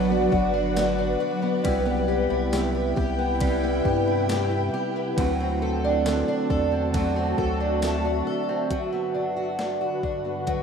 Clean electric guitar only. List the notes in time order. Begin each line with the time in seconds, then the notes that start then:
Already playing: D3 F#3 B3 D4
1.63 C3 G3 B3 E4
2.51 C3 G3
2.55 B3 E4
3.38 C3
3.43 G3
3.47 B3 E4
5.16 D3 A3 C4 F#4
6.05 D3 A3 C4
6.10 F#4
6.91 D3
6.96 A3 C4
7.03 F#4